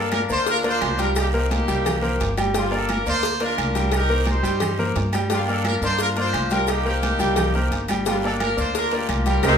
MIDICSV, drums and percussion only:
0, 0, Header, 1, 2, 480
1, 0, Start_track
1, 0, Key_signature, -2, "minor"
1, 0, Tempo, 344828
1, 1623, Time_signature, 4, 2, 24, 8
1, 13333, End_track
2, 0, Start_track
2, 0, Title_t, "Drums"
2, 162, Note_on_c, 9, 56, 77
2, 167, Note_on_c, 9, 68, 108
2, 167, Note_on_c, 9, 75, 72
2, 174, Note_on_c, 9, 63, 109
2, 174, Note_on_c, 9, 70, 31
2, 177, Note_on_c, 9, 73, 71
2, 301, Note_off_c, 9, 56, 0
2, 306, Note_off_c, 9, 68, 0
2, 306, Note_off_c, 9, 75, 0
2, 313, Note_off_c, 9, 70, 0
2, 314, Note_off_c, 9, 63, 0
2, 317, Note_off_c, 9, 73, 0
2, 407, Note_on_c, 9, 70, 73
2, 411, Note_on_c, 9, 63, 38
2, 418, Note_on_c, 9, 73, 74
2, 546, Note_off_c, 9, 70, 0
2, 551, Note_off_c, 9, 63, 0
2, 557, Note_off_c, 9, 73, 0
2, 646, Note_on_c, 9, 56, 114
2, 650, Note_on_c, 9, 74, 76
2, 651, Note_on_c, 9, 63, 37
2, 653, Note_on_c, 9, 70, 97
2, 656, Note_on_c, 9, 68, 82
2, 786, Note_off_c, 9, 56, 0
2, 789, Note_off_c, 9, 74, 0
2, 790, Note_off_c, 9, 63, 0
2, 792, Note_off_c, 9, 70, 0
2, 796, Note_off_c, 9, 68, 0
2, 895, Note_on_c, 9, 56, 74
2, 895, Note_on_c, 9, 70, 31
2, 901, Note_on_c, 9, 63, 39
2, 1034, Note_off_c, 9, 70, 0
2, 1035, Note_off_c, 9, 56, 0
2, 1040, Note_off_c, 9, 63, 0
2, 1127, Note_on_c, 9, 75, 68
2, 1135, Note_on_c, 9, 56, 80
2, 1137, Note_on_c, 9, 66, 78
2, 1137, Note_on_c, 9, 68, 121
2, 1137, Note_on_c, 9, 73, 71
2, 1139, Note_on_c, 9, 63, 89
2, 1140, Note_on_c, 9, 70, 33
2, 1266, Note_off_c, 9, 75, 0
2, 1275, Note_off_c, 9, 56, 0
2, 1276, Note_off_c, 9, 66, 0
2, 1276, Note_off_c, 9, 68, 0
2, 1276, Note_off_c, 9, 73, 0
2, 1278, Note_off_c, 9, 63, 0
2, 1280, Note_off_c, 9, 70, 0
2, 1371, Note_on_c, 9, 70, 68
2, 1377, Note_on_c, 9, 73, 77
2, 1378, Note_on_c, 9, 56, 73
2, 1379, Note_on_c, 9, 63, 73
2, 1510, Note_off_c, 9, 70, 0
2, 1516, Note_off_c, 9, 73, 0
2, 1518, Note_off_c, 9, 56, 0
2, 1518, Note_off_c, 9, 63, 0
2, 1610, Note_on_c, 9, 70, 99
2, 1614, Note_on_c, 9, 63, 35
2, 1618, Note_on_c, 9, 74, 77
2, 1619, Note_on_c, 9, 56, 121
2, 1620, Note_on_c, 9, 68, 112
2, 1620, Note_on_c, 9, 75, 76
2, 1749, Note_off_c, 9, 70, 0
2, 1753, Note_off_c, 9, 63, 0
2, 1757, Note_off_c, 9, 74, 0
2, 1759, Note_off_c, 9, 56, 0
2, 1759, Note_off_c, 9, 68, 0
2, 1760, Note_off_c, 9, 75, 0
2, 1849, Note_on_c, 9, 70, 32
2, 1858, Note_on_c, 9, 63, 34
2, 1988, Note_off_c, 9, 70, 0
2, 1997, Note_off_c, 9, 63, 0
2, 2096, Note_on_c, 9, 70, 33
2, 2102, Note_on_c, 9, 63, 114
2, 2107, Note_on_c, 9, 56, 75
2, 2108, Note_on_c, 9, 73, 74
2, 2109, Note_on_c, 9, 68, 93
2, 2235, Note_off_c, 9, 70, 0
2, 2242, Note_off_c, 9, 63, 0
2, 2246, Note_off_c, 9, 56, 0
2, 2248, Note_off_c, 9, 68, 0
2, 2248, Note_off_c, 9, 73, 0
2, 2342, Note_on_c, 9, 70, 77
2, 2342, Note_on_c, 9, 73, 76
2, 2349, Note_on_c, 9, 68, 74
2, 2481, Note_off_c, 9, 70, 0
2, 2481, Note_off_c, 9, 73, 0
2, 2489, Note_off_c, 9, 68, 0
2, 2575, Note_on_c, 9, 74, 75
2, 2587, Note_on_c, 9, 75, 69
2, 2590, Note_on_c, 9, 56, 117
2, 2593, Note_on_c, 9, 68, 124
2, 2593, Note_on_c, 9, 70, 86
2, 2595, Note_on_c, 9, 63, 37
2, 2595, Note_on_c, 9, 64, 88
2, 2714, Note_off_c, 9, 74, 0
2, 2726, Note_off_c, 9, 75, 0
2, 2729, Note_off_c, 9, 56, 0
2, 2732, Note_off_c, 9, 68, 0
2, 2732, Note_off_c, 9, 70, 0
2, 2734, Note_off_c, 9, 63, 0
2, 2734, Note_off_c, 9, 64, 0
2, 2838, Note_on_c, 9, 63, 39
2, 2838, Note_on_c, 9, 64, 76
2, 2841, Note_on_c, 9, 70, 31
2, 2977, Note_off_c, 9, 63, 0
2, 2977, Note_off_c, 9, 64, 0
2, 2980, Note_off_c, 9, 70, 0
2, 3065, Note_on_c, 9, 73, 80
2, 3073, Note_on_c, 9, 56, 78
2, 3073, Note_on_c, 9, 63, 39
2, 3074, Note_on_c, 9, 66, 75
2, 3074, Note_on_c, 9, 68, 88
2, 3074, Note_on_c, 9, 70, 32
2, 3205, Note_off_c, 9, 73, 0
2, 3212, Note_off_c, 9, 56, 0
2, 3212, Note_off_c, 9, 63, 0
2, 3213, Note_off_c, 9, 66, 0
2, 3213, Note_off_c, 9, 68, 0
2, 3213, Note_off_c, 9, 70, 0
2, 3306, Note_on_c, 9, 56, 74
2, 3308, Note_on_c, 9, 73, 82
2, 3309, Note_on_c, 9, 75, 72
2, 3311, Note_on_c, 9, 63, 90
2, 3314, Note_on_c, 9, 70, 73
2, 3315, Note_on_c, 9, 68, 119
2, 3445, Note_off_c, 9, 56, 0
2, 3447, Note_off_c, 9, 73, 0
2, 3448, Note_off_c, 9, 75, 0
2, 3450, Note_off_c, 9, 63, 0
2, 3453, Note_off_c, 9, 70, 0
2, 3454, Note_off_c, 9, 68, 0
2, 3541, Note_on_c, 9, 56, 108
2, 3547, Note_on_c, 9, 68, 91
2, 3550, Note_on_c, 9, 70, 91
2, 3553, Note_on_c, 9, 74, 74
2, 3554, Note_on_c, 9, 63, 34
2, 3681, Note_off_c, 9, 56, 0
2, 3686, Note_off_c, 9, 68, 0
2, 3689, Note_off_c, 9, 70, 0
2, 3692, Note_off_c, 9, 74, 0
2, 3693, Note_off_c, 9, 63, 0
2, 3790, Note_on_c, 9, 68, 92
2, 3794, Note_on_c, 9, 70, 32
2, 3798, Note_on_c, 9, 63, 38
2, 3929, Note_off_c, 9, 68, 0
2, 3933, Note_off_c, 9, 70, 0
2, 3937, Note_off_c, 9, 63, 0
2, 4019, Note_on_c, 9, 56, 75
2, 4019, Note_on_c, 9, 73, 76
2, 4029, Note_on_c, 9, 63, 110
2, 4031, Note_on_c, 9, 70, 32
2, 4031, Note_on_c, 9, 75, 71
2, 4034, Note_on_c, 9, 68, 117
2, 4158, Note_off_c, 9, 56, 0
2, 4158, Note_off_c, 9, 73, 0
2, 4168, Note_off_c, 9, 63, 0
2, 4170, Note_off_c, 9, 70, 0
2, 4170, Note_off_c, 9, 75, 0
2, 4173, Note_off_c, 9, 68, 0
2, 4264, Note_on_c, 9, 70, 73
2, 4270, Note_on_c, 9, 73, 77
2, 4272, Note_on_c, 9, 63, 35
2, 4403, Note_off_c, 9, 70, 0
2, 4409, Note_off_c, 9, 73, 0
2, 4411, Note_off_c, 9, 63, 0
2, 4498, Note_on_c, 9, 56, 116
2, 4505, Note_on_c, 9, 68, 78
2, 4510, Note_on_c, 9, 63, 37
2, 4511, Note_on_c, 9, 74, 68
2, 4516, Note_on_c, 9, 70, 88
2, 4637, Note_off_c, 9, 56, 0
2, 4645, Note_off_c, 9, 68, 0
2, 4649, Note_off_c, 9, 63, 0
2, 4650, Note_off_c, 9, 74, 0
2, 4655, Note_off_c, 9, 70, 0
2, 4735, Note_on_c, 9, 56, 68
2, 4754, Note_on_c, 9, 63, 38
2, 4757, Note_on_c, 9, 70, 35
2, 4874, Note_off_c, 9, 56, 0
2, 4894, Note_off_c, 9, 63, 0
2, 4896, Note_off_c, 9, 70, 0
2, 4983, Note_on_c, 9, 63, 88
2, 4984, Note_on_c, 9, 68, 112
2, 4987, Note_on_c, 9, 56, 77
2, 4990, Note_on_c, 9, 75, 73
2, 4991, Note_on_c, 9, 73, 80
2, 4999, Note_on_c, 9, 70, 31
2, 5123, Note_off_c, 9, 63, 0
2, 5124, Note_off_c, 9, 68, 0
2, 5126, Note_off_c, 9, 56, 0
2, 5129, Note_off_c, 9, 75, 0
2, 5130, Note_off_c, 9, 73, 0
2, 5138, Note_off_c, 9, 70, 0
2, 5223, Note_on_c, 9, 56, 74
2, 5223, Note_on_c, 9, 63, 74
2, 5234, Note_on_c, 9, 73, 73
2, 5236, Note_on_c, 9, 70, 78
2, 5362, Note_off_c, 9, 56, 0
2, 5362, Note_off_c, 9, 63, 0
2, 5373, Note_off_c, 9, 73, 0
2, 5375, Note_off_c, 9, 70, 0
2, 5450, Note_on_c, 9, 56, 115
2, 5461, Note_on_c, 9, 63, 34
2, 5461, Note_on_c, 9, 68, 115
2, 5463, Note_on_c, 9, 74, 75
2, 5474, Note_on_c, 9, 70, 94
2, 5474, Note_on_c, 9, 75, 75
2, 5589, Note_off_c, 9, 56, 0
2, 5600, Note_off_c, 9, 63, 0
2, 5600, Note_off_c, 9, 68, 0
2, 5602, Note_off_c, 9, 74, 0
2, 5613, Note_off_c, 9, 75, 0
2, 5614, Note_off_c, 9, 70, 0
2, 5701, Note_on_c, 9, 63, 36
2, 5708, Note_on_c, 9, 70, 33
2, 5841, Note_off_c, 9, 63, 0
2, 5848, Note_off_c, 9, 70, 0
2, 5921, Note_on_c, 9, 56, 69
2, 5937, Note_on_c, 9, 73, 77
2, 5939, Note_on_c, 9, 63, 104
2, 5941, Note_on_c, 9, 68, 92
2, 5956, Note_on_c, 9, 70, 33
2, 6060, Note_off_c, 9, 56, 0
2, 6076, Note_off_c, 9, 73, 0
2, 6078, Note_off_c, 9, 63, 0
2, 6080, Note_off_c, 9, 68, 0
2, 6096, Note_off_c, 9, 70, 0
2, 6175, Note_on_c, 9, 73, 76
2, 6187, Note_on_c, 9, 68, 77
2, 6192, Note_on_c, 9, 70, 75
2, 6315, Note_off_c, 9, 73, 0
2, 6326, Note_off_c, 9, 68, 0
2, 6332, Note_off_c, 9, 70, 0
2, 6407, Note_on_c, 9, 56, 106
2, 6419, Note_on_c, 9, 74, 68
2, 6421, Note_on_c, 9, 63, 36
2, 6421, Note_on_c, 9, 64, 82
2, 6423, Note_on_c, 9, 75, 70
2, 6426, Note_on_c, 9, 68, 108
2, 6429, Note_on_c, 9, 70, 89
2, 6546, Note_off_c, 9, 56, 0
2, 6558, Note_off_c, 9, 74, 0
2, 6560, Note_off_c, 9, 63, 0
2, 6560, Note_off_c, 9, 64, 0
2, 6563, Note_off_c, 9, 75, 0
2, 6565, Note_off_c, 9, 68, 0
2, 6569, Note_off_c, 9, 70, 0
2, 6665, Note_on_c, 9, 63, 40
2, 6665, Note_on_c, 9, 64, 80
2, 6674, Note_on_c, 9, 70, 32
2, 6804, Note_off_c, 9, 63, 0
2, 6804, Note_off_c, 9, 64, 0
2, 6814, Note_off_c, 9, 70, 0
2, 6898, Note_on_c, 9, 73, 75
2, 6901, Note_on_c, 9, 56, 76
2, 6905, Note_on_c, 9, 63, 40
2, 6906, Note_on_c, 9, 66, 78
2, 6906, Note_on_c, 9, 68, 87
2, 6908, Note_on_c, 9, 70, 33
2, 7037, Note_off_c, 9, 73, 0
2, 7041, Note_off_c, 9, 56, 0
2, 7044, Note_off_c, 9, 63, 0
2, 7045, Note_off_c, 9, 66, 0
2, 7045, Note_off_c, 9, 68, 0
2, 7048, Note_off_c, 9, 70, 0
2, 7134, Note_on_c, 9, 73, 73
2, 7136, Note_on_c, 9, 63, 81
2, 7137, Note_on_c, 9, 68, 113
2, 7140, Note_on_c, 9, 56, 75
2, 7142, Note_on_c, 9, 75, 68
2, 7154, Note_on_c, 9, 70, 73
2, 7273, Note_off_c, 9, 73, 0
2, 7276, Note_off_c, 9, 63, 0
2, 7277, Note_off_c, 9, 68, 0
2, 7279, Note_off_c, 9, 56, 0
2, 7282, Note_off_c, 9, 75, 0
2, 7293, Note_off_c, 9, 70, 0
2, 7369, Note_on_c, 9, 63, 36
2, 7375, Note_on_c, 9, 56, 119
2, 7379, Note_on_c, 9, 68, 93
2, 7383, Note_on_c, 9, 74, 78
2, 7390, Note_on_c, 9, 70, 95
2, 7509, Note_off_c, 9, 63, 0
2, 7515, Note_off_c, 9, 56, 0
2, 7518, Note_off_c, 9, 68, 0
2, 7522, Note_off_c, 9, 74, 0
2, 7529, Note_off_c, 9, 70, 0
2, 7613, Note_on_c, 9, 63, 36
2, 7628, Note_on_c, 9, 68, 93
2, 7630, Note_on_c, 9, 70, 31
2, 7752, Note_off_c, 9, 63, 0
2, 7767, Note_off_c, 9, 68, 0
2, 7769, Note_off_c, 9, 70, 0
2, 7856, Note_on_c, 9, 63, 101
2, 7861, Note_on_c, 9, 75, 74
2, 7862, Note_on_c, 9, 56, 72
2, 7862, Note_on_c, 9, 68, 116
2, 7869, Note_on_c, 9, 73, 76
2, 7872, Note_on_c, 9, 70, 31
2, 7995, Note_off_c, 9, 63, 0
2, 8000, Note_off_c, 9, 75, 0
2, 8001, Note_off_c, 9, 56, 0
2, 8002, Note_off_c, 9, 68, 0
2, 8008, Note_off_c, 9, 73, 0
2, 8011, Note_off_c, 9, 70, 0
2, 8090, Note_on_c, 9, 63, 34
2, 8100, Note_on_c, 9, 73, 75
2, 8108, Note_on_c, 9, 70, 75
2, 8229, Note_off_c, 9, 63, 0
2, 8240, Note_off_c, 9, 73, 0
2, 8247, Note_off_c, 9, 70, 0
2, 8331, Note_on_c, 9, 56, 108
2, 8337, Note_on_c, 9, 63, 34
2, 8341, Note_on_c, 9, 74, 76
2, 8344, Note_on_c, 9, 70, 101
2, 8346, Note_on_c, 9, 68, 77
2, 8470, Note_off_c, 9, 56, 0
2, 8476, Note_off_c, 9, 63, 0
2, 8480, Note_off_c, 9, 74, 0
2, 8484, Note_off_c, 9, 70, 0
2, 8485, Note_off_c, 9, 68, 0
2, 8575, Note_on_c, 9, 63, 39
2, 8582, Note_on_c, 9, 56, 73
2, 8582, Note_on_c, 9, 70, 30
2, 8715, Note_off_c, 9, 63, 0
2, 8721, Note_off_c, 9, 56, 0
2, 8721, Note_off_c, 9, 70, 0
2, 8815, Note_on_c, 9, 63, 85
2, 8815, Note_on_c, 9, 75, 73
2, 8821, Note_on_c, 9, 68, 122
2, 8822, Note_on_c, 9, 70, 33
2, 8827, Note_on_c, 9, 56, 79
2, 8827, Note_on_c, 9, 73, 76
2, 8954, Note_off_c, 9, 63, 0
2, 8954, Note_off_c, 9, 75, 0
2, 8960, Note_off_c, 9, 68, 0
2, 8961, Note_off_c, 9, 70, 0
2, 8966, Note_off_c, 9, 56, 0
2, 8966, Note_off_c, 9, 73, 0
2, 9051, Note_on_c, 9, 70, 74
2, 9063, Note_on_c, 9, 56, 74
2, 9063, Note_on_c, 9, 73, 82
2, 9191, Note_off_c, 9, 70, 0
2, 9202, Note_off_c, 9, 56, 0
2, 9202, Note_off_c, 9, 73, 0
2, 9286, Note_on_c, 9, 70, 93
2, 9293, Note_on_c, 9, 68, 119
2, 9299, Note_on_c, 9, 63, 36
2, 9302, Note_on_c, 9, 75, 70
2, 9303, Note_on_c, 9, 56, 113
2, 9310, Note_on_c, 9, 74, 74
2, 9425, Note_off_c, 9, 70, 0
2, 9433, Note_off_c, 9, 68, 0
2, 9439, Note_off_c, 9, 63, 0
2, 9441, Note_off_c, 9, 75, 0
2, 9442, Note_off_c, 9, 56, 0
2, 9449, Note_off_c, 9, 74, 0
2, 9540, Note_on_c, 9, 63, 37
2, 9548, Note_on_c, 9, 70, 32
2, 9679, Note_off_c, 9, 63, 0
2, 9687, Note_off_c, 9, 70, 0
2, 9776, Note_on_c, 9, 70, 35
2, 9784, Note_on_c, 9, 68, 95
2, 9785, Note_on_c, 9, 63, 115
2, 9787, Note_on_c, 9, 56, 74
2, 9788, Note_on_c, 9, 73, 76
2, 9915, Note_off_c, 9, 70, 0
2, 9924, Note_off_c, 9, 63, 0
2, 9924, Note_off_c, 9, 68, 0
2, 9926, Note_off_c, 9, 56, 0
2, 9927, Note_off_c, 9, 73, 0
2, 10013, Note_on_c, 9, 70, 78
2, 10020, Note_on_c, 9, 73, 79
2, 10022, Note_on_c, 9, 68, 78
2, 10153, Note_off_c, 9, 70, 0
2, 10159, Note_off_c, 9, 73, 0
2, 10162, Note_off_c, 9, 68, 0
2, 10248, Note_on_c, 9, 56, 117
2, 10254, Note_on_c, 9, 70, 91
2, 10258, Note_on_c, 9, 68, 114
2, 10262, Note_on_c, 9, 75, 69
2, 10264, Note_on_c, 9, 74, 74
2, 10275, Note_on_c, 9, 63, 38
2, 10275, Note_on_c, 9, 64, 88
2, 10387, Note_off_c, 9, 56, 0
2, 10393, Note_off_c, 9, 70, 0
2, 10397, Note_off_c, 9, 68, 0
2, 10401, Note_off_c, 9, 75, 0
2, 10403, Note_off_c, 9, 74, 0
2, 10414, Note_off_c, 9, 63, 0
2, 10414, Note_off_c, 9, 64, 0
2, 10500, Note_on_c, 9, 70, 31
2, 10507, Note_on_c, 9, 63, 39
2, 10507, Note_on_c, 9, 64, 78
2, 10639, Note_off_c, 9, 70, 0
2, 10646, Note_off_c, 9, 63, 0
2, 10646, Note_off_c, 9, 64, 0
2, 10742, Note_on_c, 9, 70, 33
2, 10743, Note_on_c, 9, 73, 77
2, 10744, Note_on_c, 9, 56, 74
2, 10745, Note_on_c, 9, 68, 90
2, 10755, Note_on_c, 9, 63, 36
2, 10881, Note_off_c, 9, 70, 0
2, 10882, Note_off_c, 9, 73, 0
2, 10883, Note_off_c, 9, 56, 0
2, 10884, Note_off_c, 9, 68, 0
2, 10894, Note_off_c, 9, 63, 0
2, 10975, Note_on_c, 9, 56, 73
2, 10979, Note_on_c, 9, 70, 79
2, 10979, Note_on_c, 9, 75, 69
2, 10984, Note_on_c, 9, 63, 83
2, 10986, Note_on_c, 9, 73, 78
2, 10987, Note_on_c, 9, 68, 117
2, 11114, Note_off_c, 9, 56, 0
2, 11118, Note_off_c, 9, 70, 0
2, 11118, Note_off_c, 9, 75, 0
2, 11123, Note_off_c, 9, 63, 0
2, 11125, Note_off_c, 9, 73, 0
2, 11127, Note_off_c, 9, 68, 0
2, 11218, Note_on_c, 9, 70, 98
2, 11221, Note_on_c, 9, 56, 108
2, 11227, Note_on_c, 9, 74, 72
2, 11229, Note_on_c, 9, 68, 94
2, 11358, Note_off_c, 9, 70, 0
2, 11360, Note_off_c, 9, 56, 0
2, 11366, Note_off_c, 9, 74, 0
2, 11368, Note_off_c, 9, 68, 0
2, 11461, Note_on_c, 9, 70, 34
2, 11471, Note_on_c, 9, 63, 34
2, 11471, Note_on_c, 9, 68, 94
2, 11600, Note_off_c, 9, 70, 0
2, 11610, Note_off_c, 9, 63, 0
2, 11610, Note_off_c, 9, 68, 0
2, 11694, Note_on_c, 9, 75, 68
2, 11696, Note_on_c, 9, 70, 33
2, 11697, Note_on_c, 9, 63, 110
2, 11699, Note_on_c, 9, 56, 77
2, 11701, Note_on_c, 9, 68, 112
2, 11702, Note_on_c, 9, 73, 74
2, 11833, Note_off_c, 9, 75, 0
2, 11835, Note_off_c, 9, 70, 0
2, 11836, Note_off_c, 9, 63, 0
2, 11838, Note_off_c, 9, 56, 0
2, 11840, Note_off_c, 9, 68, 0
2, 11841, Note_off_c, 9, 73, 0
2, 11938, Note_on_c, 9, 63, 35
2, 11940, Note_on_c, 9, 73, 76
2, 11944, Note_on_c, 9, 70, 77
2, 12077, Note_off_c, 9, 63, 0
2, 12079, Note_off_c, 9, 73, 0
2, 12083, Note_off_c, 9, 70, 0
2, 12177, Note_on_c, 9, 63, 37
2, 12178, Note_on_c, 9, 56, 115
2, 12180, Note_on_c, 9, 74, 74
2, 12181, Note_on_c, 9, 68, 76
2, 12183, Note_on_c, 9, 70, 97
2, 12316, Note_off_c, 9, 63, 0
2, 12317, Note_off_c, 9, 56, 0
2, 12319, Note_off_c, 9, 74, 0
2, 12320, Note_off_c, 9, 68, 0
2, 12322, Note_off_c, 9, 70, 0
2, 12408, Note_on_c, 9, 56, 72
2, 12414, Note_on_c, 9, 63, 38
2, 12425, Note_on_c, 9, 70, 31
2, 12547, Note_off_c, 9, 56, 0
2, 12553, Note_off_c, 9, 63, 0
2, 12564, Note_off_c, 9, 70, 0
2, 12650, Note_on_c, 9, 56, 80
2, 12651, Note_on_c, 9, 63, 96
2, 12659, Note_on_c, 9, 70, 35
2, 12660, Note_on_c, 9, 68, 110
2, 12660, Note_on_c, 9, 73, 73
2, 12660, Note_on_c, 9, 75, 76
2, 12789, Note_off_c, 9, 56, 0
2, 12790, Note_off_c, 9, 63, 0
2, 12798, Note_off_c, 9, 70, 0
2, 12799, Note_off_c, 9, 73, 0
2, 12799, Note_off_c, 9, 75, 0
2, 12800, Note_off_c, 9, 68, 0
2, 12888, Note_on_c, 9, 56, 71
2, 12893, Note_on_c, 9, 70, 71
2, 12902, Note_on_c, 9, 73, 77
2, 13027, Note_off_c, 9, 56, 0
2, 13032, Note_off_c, 9, 70, 0
2, 13042, Note_off_c, 9, 73, 0
2, 13125, Note_on_c, 9, 56, 117
2, 13133, Note_on_c, 9, 63, 100
2, 13133, Note_on_c, 9, 75, 100
2, 13135, Note_on_c, 9, 70, 101
2, 13143, Note_on_c, 9, 65, 102
2, 13146, Note_on_c, 9, 74, 106
2, 13264, Note_off_c, 9, 56, 0
2, 13272, Note_off_c, 9, 63, 0
2, 13272, Note_off_c, 9, 75, 0
2, 13275, Note_off_c, 9, 70, 0
2, 13282, Note_off_c, 9, 65, 0
2, 13285, Note_off_c, 9, 74, 0
2, 13333, End_track
0, 0, End_of_file